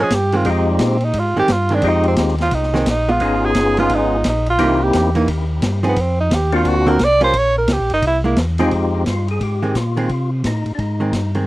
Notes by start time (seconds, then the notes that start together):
0.00 G#3 C#4 G#4
0.10 G2, kick, snare, hi-hat pedal, ride
0.15 G4
0.32 D#3 G#3 C4, ride
0.37 F4
0.45 F2 G#3 C4 D#4 F4 G4, kick, ride
0.50 D#4
0.71 G3
0.79 A#2, kick, snare, hi-hat pedal, ride
0.86 C4
1.00 ride
1.05 D#4
1.13 G#2, kick, ride
1.19 F4
1.36 G#2 D#3 G#3 C4 G4
1.48 G2, kick, snare, hi-hat pedal, ride
1.53 F4
1.69 D#3 G#3 C4, ride
1.75 D4
1.82 F2 G#3 C4 D#4 F4 G4, kick, ride
1.89 D#4
2.03 ride
2.08 C4
2.16 D#2, kick, snare, hi-hat pedal, ride
2.28 snare
2.38 F4, snare, ride
2.51 C2 D#4, kick, ride
2.63 snare
2.74 D#3 G#3 C4, snare
2.86 A#1, kick, snare, hi-hat pedal, ride
2.90 D#4
3.08 G#3 B3 F4
3.20 G#1 B3 C#4 D#4 F4 G#4, kick, ride
3.46 G#4
3.55 G1, kick, snare, hi-hat pedal, ride
3.77 G#3 B3 F4, ride
3.89 G#1, kick, ride
3.94 D#4
4.24 A#1, kick, snare, hi-hat pedal, ride
4.29 D#4
4.46 F4, ride
4.59 C2 E3 A#3 C4 D#4 E4 G4, kick, ride
4.83 G4
4.93 E2, kick, snare, hi-hat pedal, ride
5.15 E3 A#3 D#4, ride
5.27 D#2, kick, ride
5.62 G2, kick, snare, hi-hat pedal, ride
5.83 F3 C4 D#4 G#4, ride
5.88 B3
5.96 F2, kick, ride
6.01 C4
6.20 D#4
6.31 D#2 G4, kick, snare, hi-hat pedal, ride
6.52 A#3 C4 D4 F4 F#4, ride
6.65 D2, kick, ride
6.69 F#4
6.86 D3 C4 F#4 A#4
6.99 C2, kick, snare, hi-hat pedal, ride
7.04 D5
7.21 G3 C#4 F4 A#4 C5, ride
7.33 A#1, kick, ride
7.38 C#5
7.58 A#4
7.68 C#2, kick, snare, hi-hat pedal, ride
7.73 G4
7.80 A#1
7.90 G1 D#4, ride
8.02 C2, kick, ride
8.07 E4
8.24 G#3 A#3 E4
8.36 E2, kick, snare, hi-hat pedal, ride
8.58 F3 G#3 C4 D#4 F4 G4 G#4, ride
8.71 F2, kick, ride
8.96 C4
9.06 G2 F4, kick, snare, hi-hat pedal, ride
9.28 G#4, ride
9.41 G#2 G4, kick, ride
9.63 D#3 G#3 C4
9.75 A#2 F4, kick, snare, hi-hat pedal, ride
9.97 D#3 G#3 C4 F4, ride
10.09 C3, kick, ride
10.44 A2 D#4, kick, snare, hi-hat pedal, ride
10.66 A2, ride
10.75 G#2 D4, kick, ride
10.80 D#4
11.00 D#3 G#3 C4
11.13 G2, kick, snare, hi-hat pedal, ride
11.35 D#3 G#3 C4, ride